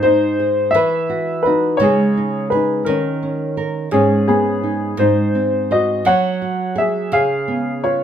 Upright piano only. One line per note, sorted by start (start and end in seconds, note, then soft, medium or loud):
0.03 0.71 D#4 medium
0.03 0.70 C5 medium
0.71 1.46 E5 medium
0.75 1.41 B4 medium
1.43 1.80 B4 medium
1.47 1.79 D#4 medium
1.77 2.46 C#5 medium
1.83 2.49 G#4 medium
2.50 2.87 B4 medium
2.55 2.86 D#4 medium
2.85 3.53 A#4 medium
2.89 3.55 C#4 medium
3.92 4.26 C#4 medium
3.92 4.25 G#4 medium
4.28 4.96 B3 medium
4.28 5.01 G#4 medium
4.99 5.67 D#4 medium
4.99 5.73 C5 medium
5.72 6.05 F#4 medium
5.72 6.04 D#5 medium
6.06 6.74 C#5 medium
6.06 6.73 F#5 medium
6.78 7.11 G#4 medium
6.78 7.14 E5 medium
7.13 7.80 G#4 medium
7.13 7.86 F5 medium
7.84 8.04 F4 medium
7.84 8.04 C#5 medium